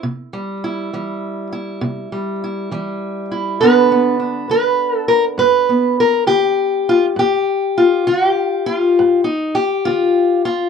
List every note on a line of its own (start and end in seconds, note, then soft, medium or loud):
0.03 0.57 C3 medium
0.33 0.94 G3 medium
0.64 1.51 E4 medium
0.93 1.47 E3 medium
0.93 2.12 G3 medium
1.53 2.42 E4 medium
1.81 2.35 C3 medium
2.12 2.72 G3 soft
2.44 3.30 E4 medium
2.71 3.25 E3 medium
2.71 3.62 G3 medium
3.31 3.57 E4 soft
3.61 4.14 G2 medium
3.61 4.48 D3 medium
3.61 3.91 B3 medium
3.61 4.19 D4 medium
3.61 4.50 B4 medium
3.92 5.68 B3 soft
4.20 6.88 D4 soft
4.49 5.03 D3 medium
4.49 4.97 B4 medium
4.97 5.08 A4 medium
5.08 5.24 A#4 medium
5.38 5.92 G2 medium
5.38 5.99 B4 loud
5.69 7.14 B3 soft
6.00 6.27 A#4 loud
6.27 6.81 D3 medium
6.27 7.17 G4 loud
6.89 7.05 F4 medium
7.16 7.70 G2 medium
7.16 8.06 G4 loud
7.78 8.65 F4 medium
8.07 8.61 D3 medium
8.07 8.27 F#4 loud
8.27 9.26 G4 loud
8.66 9.24 F4 medium
8.99 9.51 G2 medium
9.24 9.55 D#4 medium
9.55 10.44 G4 medium
9.85 10.40 D3 medium
9.85 10.44 F4 medium
10.45 10.69 F4 medium